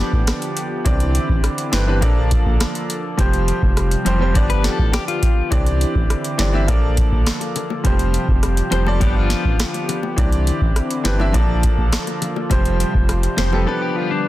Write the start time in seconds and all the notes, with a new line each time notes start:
Already playing: D3 F3 B3 D4 F4 G4 D5
0.13 A1, kick
0.27 cross-stick, snare, closed hi-hat
0.42 closed hi-hat
0.57 closed hi-hat
0.84 C2 E3 C4 D4 E4 G4 D5, kick, closed hi-hat
1.00 closed hi-hat
1.15 closed hi-hat
1.29 A1, kick
1.44 cross-stick, closed hi-hat
1.58 closed hi-hat
1.72 G1 E3 C4 D4 G4 B4, snare, closed hi-hat
1.86 E3 C4 D4 G4 B4
2.01 A#1 F3 A#3 D4 F4 A4 D5, kick, closed hi-hat
2.31 kick, closed hi-hat
2.46 A#1, kick
2.60 cross-stick, snare, closed hi-hat
2.75 closed hi-hat
2.90 closed hi-hat
3.17 F1 C3 F3 G3 C4 F4 G4 C5, kick, closed hi-hat
3.33 closed hi-hat
3.48 closed hi-hat
3.62 F1, kick
3.77 cross-stick, closed hi-hat
3.91 closed hi-hat
4.05 F1 F3 G3 C4 G4 C5, closed hi-hat
4.19 F3 G3 C4 G4 C5
4.34 G1 D3 F3 B3 D4 F4 G4 D5, kick, closed hi-hat
4.50 B4, closed hi-hat
4.64 A4, snare, closed hi-hat
4.79 A1, kick
4.93 G4, cross-stick, snare, closed hi-hat
5.08 F4, closed hi-hat
5.23 kick, closed hi-hat
5.50 C2 D3 E3 C4 D4 E4 G4 D5, kick, closed hi-hat, high bongo
5.66 closed hi-hat
5.81 closed hi-hat
5.95 A1, kick
6.10 cross-stick, closed hi-hat
6.24 closed hi-hat
6.38 G1 E3 C4 D4 G4 D5, snare, closed hi-hat, low bongo
6.52 E3 C4 D4 G4 E5, high bongo
6.67 A#1 D3 F3 A#3 D4 F4 A4 D5, kick, closed hi-hat, high bongo
6.97 kick, closed hi-hat
7.12 A#1, kick
7.26 cross-stick, snare, closed hi-hat
7.41 closed hi-hat, high bongo
7.56 closed hi-hat, low bongo
7.70 high bongo
7.84 F1 C3 F3 G3 C4 G4 C5, kick, closed hi-hat, high bongo
7.99 closed hi-hat
8.14 closed hi-hat
8.28 F1, kick
8.43 cross-stick, closed hi-hat
8.57 closed hi-hat
8.71 F1 F3 G3 C4 G4 C5, closed hi-hat, low bongo
8.85 F3 G3 C4 G4 A4 D5, high bongo
9.00 G1 D3 F3 B3 D4 F4 G4 D5, kick, closed hi-hat, high bongo
9.16 F4
9.30 snare, closed hi-hat
9.45 A1, kick
9.60 cross-stick, snare, closed hi-hat
9.74 closed hi-hat, high bongo
9.89 closed hi-hat, low bongo
10.03 high bongo
10.16 C2 E3 C4 D4 E4 G4 D5, kick, closed hi-hat, high bongo
10.32 closed hi-hat
10.47 closed hi-hat
10.61 A1, kick
10.76 cross-stick, closed hi-hat
10.90 closed hi-hat
11.04 G1 E3 C4 D4 G4 B4, snare, closed hi-hat, low bongo
11.18 E3 C4 D4 G4 E5, high bongo
11.33 A#1 F3 A#3 D4 F4 A4 D5, kick, closed hi-hat, high bongo
11.63 kick, closed hi-hat
11.78 A#1, kick
11.92 cross-stick, snare, closed hi-hat
12.07 closed hi-hat, high bongo
12.22 closed hi-hat, low bongo
12.36 high bongo
12.50 F1 C3 F3 G3 C4 G4 C5, kick, closed hi-hat, high bongo
12.65 closed hi-hat
12.80 closed hi-hat
12.94 F1, kick
13.09 cross-stick, closed hi-hat
13.23 closed hi-hat
13.37 F1 F3 G3 C4 G4 C5, snare, closed hi-hat, low bongo
13.51 F3 G3 C4 G4 A4 B4, high bongo
13.66 D3 F3 G3 B3 D4 G4 A4 B4
13.82 G4
13.96 F4
14.11 D4